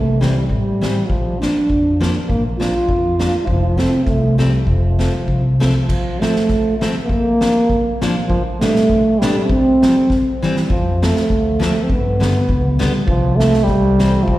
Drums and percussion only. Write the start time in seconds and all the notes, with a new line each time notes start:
0.22 snare
0.49 kick
0.82 snare
1.10 kick
1.42 snare
1.70 kick
2.02 snare
2.30 kick
2.61 snare
2.89 kick
3.20 snare
3.47 kick
3.79 snare
4.06 kick, snare
4.39 snare
4.67 kick
5.00 snare
5.28 kick
5.61 snare
5.89 kick, crash
6.22 snare
6.36 snare
6.49 kick, snare
6.82 snare
7.09 kick
7.41 snare
7.70 kick
8.02 snare
8.30 kick
8.61 snare
8.76 snare
8.89 kick
9.22 snare
9.49 kick
9.83 snare
10.10 kick, snare
10.43 snare
10.56 snare
10.70 kick
11.03 snare
11.16 snare
11.30 kick
11.62 snare
11.90 kick
12.22 snare
12.49 kick
12.81 snare
13.08 kick
13.40 snare
13.54 snare
13.67 kick, snare
13.99 snare
14.28 kick